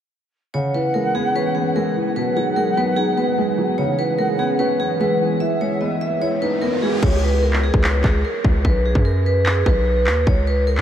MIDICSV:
0, 0, Header, 1, 8, 480
1, 0, Start_track
1, 0, Tempo, 405405
1, 639, Time_signature, 4, 2, 24, 8
1, 12804, End_track
2, 0, Start_track
2, 0, Title_t, "Flute"
2, 0, Program_c, 0, 73
2, 642, Note_on_c, 0, 78, 112
2, 2034, Note_off_c, 0, 78, 0
2, 2081, Note_on_c, 0, 76, 83
2, 2308, Note_off_c, 0, 76, 0
2, 2321, Note_on_c, 0, 80, 77
2, 2548, Note_off_c, 0, 80, 0
2, 2556, Note_on_c, 0, 78, 118
2, 3950, Note_off_c, 0, 78, 0
2, 3998, Note_on_c, 0, 75, 80
2, 4227, Note_off_c, 0, 75, 0
2, 4237, Note_on_c, 0, 80, 78
2, 4466, Note_off_c, 0, 80, 0
2, 4479, Note_on_c, 0, 78, 122
2, 5872, Note_off_c, 0, 78, 0
2, 5922, Note_on_c, 0, 76, 79
2, 6149, Note_off_c, 0, 76, 0
2, 6158, Note_on_c, 0, 80, 71
2, 6387, Note_off_c, 0, 80, 0
2, 6399, Note_on_c, 0, 76, 106
2, 7792, Note_off_c, 0, 76, 0
2, 12804, End_track
3, 0, Start_track
3, 0, Title_t, "Vibraphone"
3, 0, Program_c, 1, 11
3, 638, Note_on_c, 1, 73, 83
3, 851, Note_off_c, 1, 73, 0
3, 882, Note_on_c, 1, 71, 76
3, 1093, Note_off_c, 1, 71, 0
3, 1114, Note_on_c, 1, 70, 76
3, 1329, Note_off_c, 1, 70, 0
3, 1361, Note_on_c, 1, 68, 77
3, 1572, Note_off_c, 1, 68, 0
3, 1606, Note_on_c, 1, 71, 83
3, 1815, Note_off_c, 1, 71, 0
3, 1834, Note_on_c, 1, 68, 75
3, 2049, Note_off_c, 1, 68, 0
3, 2083, Note_on_c, 1, 70, 75
3, 2294, Note_off_c, 1, 70, 0
3, 2559, Note_on_c, 1, 71, 82
3, 2772, Note_off_c, 1, 71, 0
3, 2803, Note_on_c, 1, 68, 72
3, 3014, Note_off_c, 1, 68, 0
3, 3035, Note_on_c, 1, 70, 76
3, 3249, Note_off_c, 1, 70, 0
3, 3285, Note_on_c, 1, 71, 80
3, 3495, Note_off_c, 1, 71, 0
3, 3510, Note_on_c, 1, 68, 86
3, 3727, Note_off_c, 1, 68, 0
3, 3760, Note_on_c, 1, 71, 81
3, 4436, Note_off_c, 1, 71, 0
3, 4476, Note_on_c, 1, 73, 86
3, 4690, Note_off_c, 1, 73, 0
3, 4720, Note_on_c, 1, 71, 81
3, 4932, Note_off_c, 1, 71, 0
3, 4955, Note_on_c, 1, 70, 83
3, 5169, Note_off_c, 1, 70, 0
3, 5199, Note_on_c, 1, 68, 85
3, 5411, Note_off_c, 1, 68, 0
3, 5436, Note_on_c, 1, 71, 92
3, 5650, Note_off_c, 1, 71, 0
3, 5682, Note_on_c, 1, 68, 84
3, 5893, Note_off_c, 1, 68, 0
3, 5929, Note_on_c, 1, 71, 88
3, 6137, Note_off_c, 1, 71, 0
3, 6398, Note_on_c, 1, 76, 86
3, 6611, Note_off_c, 1, 76, 0
3, 6643, Note_on_c, 1, 73, 88
3, 6854, Note_off_c, 1, 73, 0
3, 6877, Note_on_c, 1, 75, 70
3, 7090, Note_off_c, 1, 75, 0
3, 7119, Note_on_c, 1, 76, 81
3, 7331, Note_off_c, 1, 76, 0
3, 7359, Note_on_c, 1, 73, 88
3, 7571, Note_off_c, 1, 73, 0
3, 7600, Note_on_c, 1, 71, 89
3, 7812, Note_off_c, 1, 71, 0
3, 7835, Note_on_c, 1, 70, 84
3, 8049, Note_off_c, 1, 70, 0
3, 8079, Note_on_c, 1, 68, 74
3, 8291, Note_off_c, 1, 68, 0
3, 8318, Note_on_c, 1, 73, 86
3, 8531, Note_off_c, 1, 73, 0
3, 8561, Note_on_c, 1, 71, 83
3, 8773, Note_off_c, 1, 71, 0
3, 8793, Note_on_c, 1, 70, 77
3, 9008, Note_off_c, 1, 70, 0
3, 9041, Note_on_c, 1, 68, 82
3, 9253, Note_off_c, 1, 68, 0
3, 9286, Note_on_c, 1, 71, 84
3, 9496, Note_off_c, 1, 71, 0
3, 9516, Note_on_c, 1, 68, 81
3, 9730, Note_off_c, 1, 68, 0
3, 9765, Note_on_c, 1, 70, 75
3, 9975, Note_off_c, 1, 70, 0
3, 10239, Note_on_c, 1, 71, 82
3, 10452, Note_off_c, 1, 71, 0
3, 10484, Note_on_c, 1, 68, 74
3, 10694, Note_off_c, 1, 68, 0
3, 10716, Note_on_c, 1, 70, 80
3, 10930, Note_off_c, 1, 70, 0
3, 10967, Note_on_c, 1, 71, 81
3, 11176, Note_off_c, 1, 71, 0
3, 11191, Note_on_c, 1, 68, 89
3, 11407, Note_off_c, 1, 68, 0
3, 11442, Note_on_c, 1, 71, 83
3, 12117, Note_off_c, 1, 71, 0
3, 12157, Note_on_c, 1, 73, 88
3, 12371, Note_off_c, 1, 73, 0
3, 12400, Note_on_c, 1, 71, 85
3, 12612, Note_off_c, 1, 71, 0
3, 12635, Note_on_c, 1, 70, 87
3, 12804, Note_off_c, 1, 70, 0
3, 12804, End_track
4, 0, Start_track
4, 0, Title_t, "Analog synth pad"
4, 0, Program_c, 2, 89
4, 638, Note_on_c, 2, 61, 75
4, 639, Note_on_c, 2, 52, 82
4, 639, Note_on_c, 2, 59, 74
4, 639, Note_on_c, 2, 68, 90
4, 2540, Note_off_c, 2, 52, 0
4, 2540, Note_off_c, 2, 61, 0
4, 2540, Note_off_c, 2, 68, 0
4, 2559, Note_on_c, 2, 63, 75
4, 2559, Note_on_c, 2, 68, 87
4, 2560, Note_on_c, 2, 54, 84
4, 4460, Note_off_c, 2, 54, 0
4, 4460, Note_off_c, 2, 63, 0
4, 4460, Note_off_c, 2, 68, 0
4, 4479, Note_on_c, 2, 52, 80
4, 4479, Note_on_c, 2, 61, 79
4, 4479, Note_on_c, 2, 68, 91
4, 6380, Note_off_c, 2, 61, 0
4, 8272, Note_off_c, 2, 59, 0
4, 8281, Note_off_c, 2, 52, 0
4, 8281, Note_off_c, 2, 68, 0
4, 12804, End_track
5, 0, Start_track
5, 0, Title_t, "Felt piano"
5, 0, Program_c, 3, 0
5, 641, Note_on_c, 3, 49, 81
5, 859, Control_c, 3, 64, 127
5, 881, Note_on_c, 3, 52, 72
5, 1119, Note_on_c, 3, 56, 76
5, 1359, Note_on_c, 3, 59, 96
5, 1598, Note_on_c, 3, 61, 78
5, 1824, Note_off_c, 3, 59, 0
5, 1840, Note_off_c, 3, 49, 0
5, 1841, Note_on_c, 3, 59, 82
5, 2061, Note_off_c, 3, 56, 0
5, 2079, Note_on_c, 3, 56, 92
5, 2080, Note_off_c, 3, 52, 0
5, 2317, Note_on_c, 3, 52, 73
5, 2558, Note_off_c, 3, 52, 0
5, 2559, Note_off_c, 3, 56, 0
5, 2559, Note_off_c, 3, 61, 0
5, 2560, Note_off_c, 3, 59, 0
5, 2560, Note_on_c, 3, 47, 78
5, 2575, Control_c, 3, 64, 0
5, 2761, Control_c, 3, 64, 127
5, 2799, Note_on_c, 3, 54, 76
5, 3038, Note_on_c, 3, 56, 80
5, 3279, Note_on_c, 3, 59, 104
5, 3517, Note_on_c, 3, 63, 83
5, 3741, Note_off_c, 3, 59, 0
5, 3759, Note_on_c, 3, 59, 81
5, 3760, Note_off_c, 3, 47, 0
5, 3981, Note_off_c, 3, 56, 0
5, 3999, Note_off_c, 3, 54, 0
5, 3999, Note_on_c, 3, 56, 93
5, 4238, Note_on_c, 3, 54, 79
5, 4478, Note_off_c, 3, 63, 0
5, 4479, Note_off_c, 3, 54, 0
5, 4479, Note_off_c, 3, 56, 0
5, 4479, Note_off_c, 3, 59, 0
5, 4479, Note_on_c, 3, 49, 80
5, 4493, Control_c, 3, 64, 0
5, 4690, Control_c, 3, 64, 127
5, 4718, Note_on_c, 3, 52, 74
5, 4959, Note_on_c, 3, 56, 77
5, 5199, Note_on_c, 3, 59, 93
5, 5439, Note_on_c, 3, 61, 81
5, 5662, Note_off_c, 3, 59, 0
5, 5679, Note_off_c, 3, 49, 0
5, 5680, Note_on_c, 3, 59, 76
5, 5900, Note_off_c, 3, 56, 0
5, 5918, Note_on_c, 3, 56, 100
5, 5919, Note_off_c, 3, 52, 0
5, 6159, Note_on_c, 3, 52, 75
5, 6381, Note_off_c, 3, 52, 0
5, 6399, Note_off_c, 3, 56, 0
5, 6399, Note_off_c, 3, 61, 0
5, 6399, Note_on_c, 3, 52, 82
5, 6400, Note_off_c, 3, 59, 0
5, 6416, Control_c, 3, 64, 0
5, 6611, Control_c, 3, 64, 127
5, 6640, Note_on_c, 3, 56, 79
5, 6880, Note_on_c, 3, 59, 80
5, 7358, Note_on_c, 3, 64, 80
5, 7597, Note_on_c, 3, 63, 86
5, 7599, Note_off_c, 3, 52, 0
5, 7822, Note_off_c, 3, 59, 0
5, 7839, Note_on_c, 3, 59, 93
5, 7840, Note_off_c, 3, 56, 0
5, 8079, Note_on_c, 3, 56, 74
5, 8318, Note_off_c, 3, 63, 0
5, 8319, Note_off_c, 3, 56, 0
5, 8319, Note_off_c, 3, 59, 0
5, 8319, Note_off_c, 3, 64, 0
5, 8332, Control_c, 3, 64, 0
5, 8567, Control_c, 3, 64, 127
5, 10257, Control_c, 3, 64, 0
5, 12804, End_track
6, 0, Start_track
6, 0, Title_t, "808-style bass"
6, 0, Program_c, 4, 38
6, 8320, Note_on_c, 4, 37, 110
6, 9126, Note_off_c, 4, 37, 0
6, 9161, Note_on_c, 4, 37, 105
6, 9506, Note_off_c, 4, 37, 0
6, 9519, Note_on_c, 4, 37, 107
6, 9750, Note_off_c, 4, 37, 0
6, 9999, Note_on_c, 4, 37, 101
6, 10229, Note_off_c, 4, 37, 0
6, 10239, Note_on_c, 4, 35, 110
6, 10585, Note_off_c, 4, 35, 0
6, 10599, Note_on_c, 4, 42, 96
6, 11406, Note_off_c, 4, 42, 0
6, 11439, Note_on_c, 4, 35, 109
6, 11919, Note_on_c, 4, 39, 99
6, 11937, Note_off_c, 4, 35, 0
6, 12147, Note_off_c, 4, 39, 0
6, 12159, Note_on_c, 4, 37, 102
6, 12759, Note_on_c, 4, 49, 98
6, 12776, Note_off_c, 4, 37, 0
6, 12804, Note_off_c, 4, 49, 0
6, 12804, End_track
7, 0, Start_track
7, 0, Title_t, "Riser"
7, 0, Program_c, 5, 103
7, 6399, Note_on_c, 5, 60, 83
7, 8319, Note_off_c, 5, 60, 0
7, 12804, End_track
8, 0, Start_track
8, 0, Title_t, "Drums"
8, 8319, Note_on_c, 9, 36, 124
8, 8320, Note_on_c, 9, 49, 96
8, 8438, Note_off_c, 9, 36, 0
8, 8438, Note_off_c, 9, 49, 0
8, 8919, Note_on_c, 9, 39, 70
8, 9037, Note_off_c, 9, 39, 0
8, 9161, Note_on_c, 9, 36, 91
8, 9279, Note_off_c, 9, 36, 0
8, 9281, Note_on_c, 9, 39, 117
8, 9399, Note_off_c, 9, 39, 0
8, 9519, Note_on_c, 9, 36, 98
8, 9520, Note_on_c, 9, 39, 96
8, 9638, Note_off_c, 9, 36, 0
8, 9639, Note_off_c, 9, 39, 0
8, 9999, Note_on_c, 9, 36, 101
8, 10117, Note_off_c, 9, 36, 0
8, 10239, Note_on_c, 9, 36, 125
8, 10358, Note_off_c, 9, 36, 0
8, 10599, Note_on_c, 9, 36, 93
8, 10718, Note_off_c, 9, 36, 0
8, 11201, Note_on_c, 9, 39, 119
8, 11319, Note_off_c, 9, 39, 0
8, 11439, Note_on_c, 9, 36, 103
8, 11558, Note_off_c, 9, 36, 0
8, 11919, Note_on_c, 9, 39, 96
8, 12037, Note_off_c, 9, 39, 0
8, 12159, Note_on_c, 9, 36, 127
8, 12278, Note_off_c, 9, 36, 0
8, 12759, Note_on_c, 9, 39, 71
8, 12804, Note_off_c, 9, 39, 0
8, 12804, End_track
0, 0, End_of_file